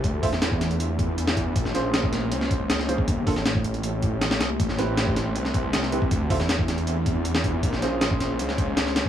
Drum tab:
HH |x-o-x-xxx-x-x-x-|x-x-x-x-x-x-x-x-|x-o-x-xxx-x-x-x-|x-x-x-x-x-x-x-x-|
SD |---oo-o------o--|-oo-o-o--o--oo--|---oo-------ooo-|-oo-o-o--o--oo--|
BD |o-o--o----o---o-|o----o----o----o|o-o--o----o-----|o----o----o----o|

HH |x-o-x-xxx-x-x-x-|x-x-x-x-x-x-x-x-|
SD |---oo-o------o--|-oo-o-o--o--ooo-|
BD |o-o--o----o---o-|o----o----o----o|